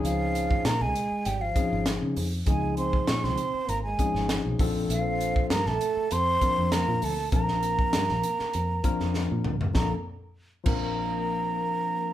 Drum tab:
CC |----------------|----------------|----------------|----------------|
HH |x-x-x-x-x-x-x-o-|x-x-x-x-x-x-x-o-|x-x-x-x-x-x-x-o-|x-x-x-x-x-x-----|
SD |----o-------o---|----oo-----oo---|----oo------o---|-o--oo-o---oo---|
T2 |----------------|----------------|----------------|--------------o-|
FT |----------------|----------------|----------------|---------------o|
BD |---o------o-----|o--o------o---o-|---o------o-----|o--o------o-----|

CC |------x---------|
HH |----------------|
SD |o---------------|
T2 |----------------|
FT |----------------|
BD |o-----o---------|